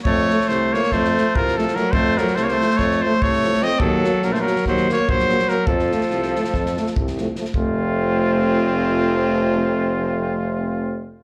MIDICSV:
0, 0, Header, 1, 7, 480
1, 0, Start_track
1, 0, Tempo, 416667
1, 54, Time_signature, 9, 3, 24, 8
1, 12938, End_track
2, 0, Start_track
2, 0, Title_t, "Trumpet"
2, 0, Program_c, 0, 56
2, 57, Note_on_c, 0, 73, 106
2, 552, Note_on_c, 0, 72, 90
2, 569, Note_off_c, 0, 73, 0
2, 846, Note_on_c, 0, 73, 93
2, 864, Note_off_c, 0, 72, 0
2, 1070, Note_on_c, 0, 72, 93
2, 1087, Note_off_c, 0, 73, 0
2, 1567, Note_on_c, 0, 70, 93
2, 1585, Note_off_c, 0, 72, 0
2, 1813, Note_on_c, 0, 69, 80
2, 1831, Note_off_c, 0, 70, 0
2, 2017, Note_on_c, 0, 70, 91
2, 2035, Note_off_c, 0, 69, 0
2, 2208, Note_on_c, 0, 72, 106
2, 2225, Note_off_c, 0, 70, 0
2, 2507, Note_on_c, 0, 70, 85
2, 2525, Note_off_c, 0, 72, 0
2, 2710, Note_on_c, 0, 72, 88
2, 2727, Note_off_c, 0, 70, 0
2, 2804, Note_on_c, 0, 73, 73
2, 2822, Note_off_c, 0, 72, 0
2, 2876, Note_on_c, 0, 72, 93
2, 2893, Note_off_c, 0, 73, 0
2, 3194, Note_on_c, 0, 73, 89
2, 3212, Note_off_c, 0, 72, 0
2, 3479, Note_on_c, 0, 72, 95
2, 3496, Note_off_c, 0, 73, 0
2, 3713, Note_on_c, 0, 73, 107
2, 3730, Note_off_c, 0, 72, 0
2, 4184, Note_on_c, 0, 75, 105
2, 4202, Note_off_c, 0, 73, 0
2, 4374, Note_on_c, 0, 69, 93
2, 4391, Note_off_c, 0, 75, 0
2, 4893, Note_on_c, 0, 70, 85
2, 4910, Note_off_c, 0, 69, 0
2, 4995, Note_on_c, 0, 72, 70
2, 5012, Note_off_c, 0, 70, 0
2, 5080, Note_on_c, 0, 70, 92
2, 5097, Note_off_c, 0, 72, 0
2, 5382, Note_off_c, 0, 70, 0
2, 5389, Note_on_c, 0, 72, 83
2, 5647, Note_off_c, 0, 72, 0
2, 5680, Note_on_c, 0, 73, 96
2, 5874, Note_on_c, 0, 72, 99
2, 5892, Note_off_c, 0, 73, 0
2, 6328, Note_on_c, 0, 70, 94
2, 6345, Note_off_c, 0, 72, 0
2, 6527, Note_on_c, 0, 69, 78
2, 6545, Note_off_c, 0, 70, 0
2, 8277, Note_off_c, 0, 69, 0
2, 8704, Note_on_c, 0, 65, 89
2, 12750, Note_off_c, 0, 65, 0
2, 12938, End_track
3, 0, Start_track
3, 0, Title_t, "Alto saxophone"
3, 0, Program_c, 1, 65
3, 62, Note_on_c, 1, 57, 96
3, 567, Note_off_c, 1, 57, 0
3, 567, Note_on_c, 1, 57, 81
3, 846, Note_on_c, 1, 58, 81
3, 864, Note_off_c, 1, 57, 0
3, 1063, Note_on_c, 1, 57, 93
3, 1080, Note_off_c, 1, 58, 0
3, 1575, Note_on_c, 1, 53, 77
3, 1592, Note_off_c, 1, 57, 0
3, 1818, Note_off_c, 1, 53, 0
3, 1818, Note_on_c, 1, 53, 67
3, 2021, Note_on_c, 1, 54, 75
3, 2038, Note_off_c, 1, 53, 0
3, 2226, Note_on_c, 1, 57, 86
3, 2243, Note_off_c, 1, 54, 0
3, 2522, Note_on_c, 1, 54, 77
3, 2539, Note_off_c, 1, 57, 0
3, 2725, Note_on_c, 1, 57, 74
3, 2742, Note_off_c, 1, 54, 0
3, 2819, Note_on_c, 1, 58, 67
3, 2836, Note_off_c, 1, 57, 0
3, 2920, Note_on_c, 1, 57, 78
3, 2937, Note_off_c, 1, 58, 0
3, 3227, Note_off_c, 1, 57, 0
3, 3227, Note_on_c, 1, 57, 84
3, 3498, Note_off_c, 1, 57, 0
3, 3498, Note_on_c, 1, 57, 73
3, 3694, Note_off_c, 1, 57, 0
3, 3694, Note_on_c, 1, 57, 76
3, 4173, Note_on_c, 1, 60, 83
3, 4191, Note_off_c, 1, 57, 0
3, 4388, Note_on_c, 1, 54, 87
3, 4405, Note_off_c, 1, 60, 0
3, 4875, Note_off_c, 1, 54, 0
3, 4875, Note_on_c, 1, 54, 76
3, 4979, Note_on_c, 1, 57, 66
3, 4997, Note_off_c, 1, 54, 0
3, 5070, Note_on_c, 1, 54, 70
3, 5088, Note_off_c, 1, 57, 0
3, 5372, Note_off_c, 1, 54, 0
3, 5379, Note_on_c, 1, 54, 83
3, 5641, Note_off_c, 1, 54, 0
3, 5651, Note_on_c, 1, 58, 76
3, 5864, Note_on_c, 1, 54, 78
3, 5881, Note_off_c, 1, 58, 0
3, 6323, Note_off_c, 1, 54, 0
3, 6323, Note_on_c, 1, 54, 69
3, 6526, Note_on_c, 1, 53, 87
3, 6543, Note_off_c, 1, 54, 0
3, 8276, Note_off_c, 1, 53, 0
3, 8696, Note_on_c, 1, 60, 76
3, 12742, Note_off_c, 1, 60, 0
3, 12938, End_track
4, 0, Start_track
4, 0, Title_t, "French horn"
4, 0, Program_c, 2, 60
4, 344, Note_on_c, 2, 57, 63
4, 429, Note_off_c, 2, 57, 0
4, 846, Note_on_c, 2, 57, 61
4, 931, Note_off_c, 2, 57, 0
4, 1352, Note_on_c, 2, 57, 67
4, 1436, Note_off_c, 2, 57, 0
4, 1822, Note_on_c, 2, 57, 72
4, 1902, Note_off_c, 2, 57, 0
4, 2037, Note_on_c, 2, 57, 61
4, 2116, Note_off_c, 2, 57, 0
4, 2512, Note_on_c, 2, 57, 68
4, 2598, Note_off_c, 2, 57, 0
4, 3017, Note_on_c, 2, 57, 70
4, 3101, Note_off_c, 2, 57, 0
4, 3514, Note_on_c, 2, 57, 81
4, 3599, Note_off_c, 2, 57, 0
4, 3969, Note_on_c, 2, 57, 64
4, 4053, Note_off_c, 2, 57, 0
4, 4180, Note_on_c, 2, 57, 61
4, 4263, Note_off_c, 2, 57, 0
4, 4651, Note_on_c, 2, 58, 78
4, 4741, Note_off_c, 2, 58, 0
4, 5150, Note_on_c, 2, 58, 60
4, 5240, Note_off_c, 2, 58, 0
4, 5653, Note_on_c, 2, 58, 70
4, 5742, Note_off_c, 2, 58, 0
4, 6112, Note_on_c, 2, 58, 70
4, 6199, Note_off_c, 2, 58, 0
4, 6326, Note_on_c, 2, 58, 63
4, 6412, Note_off_c, 2, 58, 0
4, 6835, Note_on_c, 2, 57, 66
4, 6920, Note_off_c, 2, 57, 0
4, 7328, Note_on_c, 2, 57, 58
4, 7414, Note_off_c, 2, 57, 0
4, 7810, Note_on_c, 2, 57, 62
4, 7899, Note_off_c, 2, 57, 0
4, 8300, Note_on_c, 2, 57, 55
4, 8381, Note_off_c, 2, 57, 0
4, 8499, Note_on_c, 2, 57, 48
4, 8581, Note_off_c, 2, 57, 0
4, 8710, Note_on_c, 2, 57, 75
4, 12756, Note_off_c, 2, 57, 0
4, 12938, End_track
5, 0, Start_track
5, 0, Title_t, "Euphonium"
5, 0, Program_c, 3, 58
5, 350, Note_on_c, 3, 53, 60
5, 435, Note_off_c, 3, 53, 0
5, 840, Note_on_c, 3, 53, 62
5, 927, Note_off_c, 3, 53, 0
5, 1346, Note_on_c, 3, 53, 66
5, 1431, Note_off_c, 3, 53, 0
5, 1821, Note_on_c, 3, 53, 67
5, 1901, Note_off_c, 3, 53, 0
5, 2013, Note_on_c, 3, 53, 54
5, 2097, Note_off_c, 3, 53, 0
5, 2511, Note_on_c, 3, 53, 72
5, 2596, Note_off_c, 3, 53, 0
5, 2996, Note_on_c, 3, 53, 66
5, 3085, Note_off_c, 3, 53, 0
5, 3485, Note_on_c, 3, 53, 67
5, 3575, Note_off_c, 3, 53, 0
5, 3954, Note_on_c, 3, 53, 76
5, 4041, Note_off_c, 3, 53, 0
5, 4165, Note_on_c, 3, 53, 70
5, 4251, Note_off_c, 3, 53, 0
5, 4651, Note_on_c, 3, 54, 79
5, 4741, Note_off_c, 3, 54, 0
5, 5150, Note_on_c, 3, 54, 71
5, 5240, Note_off_c, 3, 54, 0
5, 5654, Note_on_c, 3, 54, 73
5, 5743, Note_off_c, 3, 54, 0
5, 6102, Note_on_c, 3, 54, 64
5, 6191, Note_off_c, 3, 54, 0
5, 6327, Note_on_c, 3, 54, 65
5, 6413, Note_off_c, 3, 54, 0
5, 6813, Note_on_c, 3, 53, 74
5, 6903, Note_off_c, 3, 53, 0
5, 7308, Note_on_c, 3, 53, 60
5, 7398, Note_off_c, 3, 53, 0
5, 7815, Note_on_c, 3, 53, 60
5, 7903, Note_off_c, 3, 53, 0
5, 8288, Note_on_c, 3, 53, 58
5, 8371, Note_off_c, 3, 53, 0
5, 8493, Note_on_c, 3, 53, 49
5, 8576, Note_off_c, 3, 53, 0
5, 8696, Note_on_c, 3, 53, 72
5, 12741, Note_off_c, 3, 53, 0
5, 12938, End_track
6, 0, Start_track
6, 0, Title_t, "Tuba"
6, 0, Program_c, 4, 58
6, 64, Note_on_c, 4, 41, 104
6, 336, Note_off_c, 4, 41, 0
6, 570, Note_on_c, 4, 36, 85
6, 840, Note_off_c, 4, 36, 0
6, 1073, Note_on_c, 4, 41, 95
6, 1342, Note_off_c, 4, 41, 0
6, 1565, Note_on_c, 4, 36, 73
6, 1930, Note_off_c, 4, 36, 0
6, 2226, Note_on_c, 4, 41, 100
6, 2500, Note_off_c, 4, 41, 0
6, 2717, Note_on_c, 4, 36, 86
6, 2992, Note_off_c, 4, 36, 0
6, 3216, Note_on_c, 4, 41, 85
6, 3492, Note_off_c, 4, 41, 0
6, 3716, Note_on_c, 4, 36, 73
6, 4085, Note_off_c, 4, 36, 0
6, 4379, Note_on_c, 4, 39, 114
6, 4655, Note_off_c, 4, 39, 0
6, 4875, Note_on_c, 4, 34, 93
6, 5151, Note_off_c, 4, 34, 0
6, 5372, Note_on_c, 4, 39, 94
6, 5648, Note_off_c, 4, 39, 0
6, 5864, Note_on_c, 4, 34, 81
6, 6236, Note_off_c, 4, 34, 0
6, 6543, Note_on_c, 4, 41, 98
6, 6817, Note_off_c, 4, 41, 0
6, 7047, Note_on_c, 4, 36, 84
6, 7320, Note_off_c, 4, 36, 0
6, 7529, Note_on_c, 4, 41, 88
6, 7805, Note_off_c, 4, 41, 0
6, 8024, Note_on_c, 4, 36, 86
6, 8394, Note_off_c, 4, 36, 0
6, 8695, Note_on_c, 4, 29, 108
6, 12740, Note_off_c, 4, 29, 0
6, 12938, End_track
7, 0, Start_track
7, 0, Title_t, "Drums"
7, 60, Note_on_c, 9, 36, 97
7, 175, Note_off_c, 9, 36, 0
7, 346, Note_on_c, 9, 38, 31
7, 461, Note_off_c, 9, 38, 0
7, 466, Note_on_c, 9, 38, 28
7, 564, Note_off_c, 9, 38, 0
7, 564, Note_on_c, 9, 38, 31
7, 679, Note_off_c, 9, 38, 0
7, 852, Note_on_c, 9, 38, 24
7, 959, Note_off_c, 9, 38, 0
7, 959, Note_on_c, 9, 38, 27
7, 1051, Note_off_c, 9, 38, 0
7, 1051, Note_on_c, 9, 38, 32
7, 1057, Note_on_c, 9, 36, 54
7, 1167, Note_off_c, 9, 38, 0
7, 1172, Note_off_c, 9, 36, 0
7, 1202, Note_on_c, 9, 38, 29
7, 1317, Note_off_c, 9, 38, 0
7, 1351, Note_on_c, 9, 38, 28
7, 1467, Note_off_c, 9, 38, 0
7, 1561, Note_on_c, 9, 36, 95
7, 1676, Note_off_c, 9, 36, 0
7, 1702, Note_on_c, 9, 38, 25
7, 1817, Note_off_c, 9, 38, 0
7, 1826, Note_on_c, 9, 38, 33
7, 1932, Note_off_c, 9, 38, 0
7, 1932, Note_on_c, 9, 38, 30
7, 2032, Note_off_c, 9, 38, 0
7, 2032, Note_on_c, 9, 38, 32
7, 2147, Note_off_c, 9, 38, 0
7, 2223, Note_on_c, 9, 36, 105
7, 2338, Note_off_c, 9, 36, 0
7, 2506, Note_on_c, 9, 38, 29
7, 2619, Note_off_c, 9, 38, 0
7, 2619, Note_on_c, 9, 38, 27
7, 2721, Note_off_c, 9, 38, 0
7, 2721, Note_on_c, 9, 38, 29
7, 2837, Note_off_c, 9, 38, 0
7, 2863, Note_on_c, 9, 38, 25
7, 2978, Note_off_c, 9, 38, 0
7, 3008, Note_on_c, 9, 38, 30
7, 3115, Note_off_c, 9, 38, 0
7, 3115, Note_on_c, 9, 38, 27
7, 3210, Note_off_c, 9, 38, 0
7, 3210, Note_on_c, 9, 38, 28
7, 3214, Note_on_c, 9, 36, 61
7, 3325, Note_off_c, 9, 38, 0
7, 3329, Note_off_c, 9, 36, 0
7, 3353, Note_on_c, 9, 38, 28
7, 3468, Note_off_c, 9, 38, 0
7, 3708, Note_on_c, 9, 36, 88
7, 3823, Note_off_c, 9, 36, 0
7, 3835, Note_on_c, 9, 38, 23
7, 3950, Note_off_c, 9, 38, 0
7, 3956, Note_on_c, 9, 38, 28
7, 4071, Note_off_c, 9, 38, 0
7, 4075, Note_on_c, 9, 38, 26
7, 4171, Note_off_c, 9, 38, 0
7, 4171, Note_on_c, 9, 38, 27
7, 4286, Note_off_c, 9, 38, 0
7, 4375, Note_on_c, 9, 36, 97
7, 4490, Note_off_c, 9, 36, 0
7, 4654, Note_on_c, 9, 38, 31
7, 4769, Note_off_c, 9, 38, 0
7, 4865, Note_on_c, 9, 38, 26
7, 4980, Note_off_c, 9, 38, 0
7, 5008, Note_on_c, 9, 38, 27
7, 5123, Note_off_c, 9, 38, 0
7, 5149, Note_on_c, 9, 38, 28
7, 5253, Note_off_c, 9, 38, 0
7, 5253, Note_on_c, 9, 38, 28
7, 5362, Note_off_c, 9, 38, 0
7, 5362, Note_on_c, 9, 38, 25
7, 5365, Note_on_c, 9, 36, 59
7, 5477, Note_off_c, 9, 38, 0
7, 5480, Note_off_c, 9, 36, 0
7, 5494, Note_on_c, 9, 38, 30
7, 5610, Note_off_c, 9, 38, 0
7, 5636, Note_on_c, 9, 38, 31
7, 5751, Note_off_c, 9, 38, 0
7, 5860, Note_on_c, 9, 36, 87
7, 5976, Note_off_c, 9, 36, 0
7, 5977, Note_on_c, 9, 38, 27
7, 6092, Note_off_c, 9, 38, 0
7, 6099, Note_on_c, 9, 38, 31
7, 6207, Note_off_c, 9, 38, 0
7, 6207, Note_on_c, 9, 38, 30
7, 6318, Note_off_c, 9, 38, 0
7, 6318, Note_on_c, 9, 38, 24
7, 6433, Note_off_c, 9, 38, 0
7, 6531, Note_on_c, 9, 36, 106
7, 6647, Note_off_c, 9, 36, 0
7, 6671, Note_on_c, 9, 38, 22
7, 6786, Note_off_c, 9, 38, 0
7, 6814, Note_on_c, 9, 38, 29
7, 6923, Note_off_c, 9, 38, 0
7, 6923, Note_on_c, 9, 38, 27
7, 7032, Note_off_c, 9, 38, 0
7, 7032, Note_on_c, 9, 38, 25
7, 7147, Note_off_c, 9, 38, 0
7, 7172, Note_on_c, 9, 38, 23
7, 7287, Note_off_c, 9, 38, 0
7, 7320, Note_on_c, 9, 38, 25
7, 7422, Note_off_c, 9, 38, 0
7, 7422, Note_on_c, 9, 38, 30
7, 7528, Note_off_c, 9, 38, 0
7, 7528, Note_on_c, 9, 38, 27
7, 7531, Note_on_c, 9, 36, 65
7, 7644, Note_off_c, 9, 38, 0
7, 7646, Note_off_c, 9, 36, 0
7, 7670, Note_on_c, 9, 38, 30
7, 7785, Note_off_c, 9, 38, 0
7, 7799, Note_on_c, 9, 38, 30
7, 7909, Note_off_c, 9, 38, 0
7, 7909, Note_on_c, 9, 38, 27
7, 8023, Note_on_c, 9, 36, 93
7, 8024, Note_off_c, 9, 38, 0
7, 8138, Note_off_c, 9, 36, 0
7, 8144, Note_on_c, 9, 38, 25
7, 8259, Note_off_c, 9, 38, 0
7, 8268, Note_on_c, 9, 38, 30
7, 8383, Note_off_c, 9, 38, 0
7, 8474, Note_on_c, 9, 38, 27
7, 8581, Note_off_c, 9, 38, 0
7, 8581, Note_on_c, 9, 38, 28
7, 8687, Note_on_c, 9, 36, 82
7, 8696, Note_off_c, 9, 38, 0
7, 8803, Note_off_c, 9, 36, 0
7, 12938, End_track
0, 0, End_of_file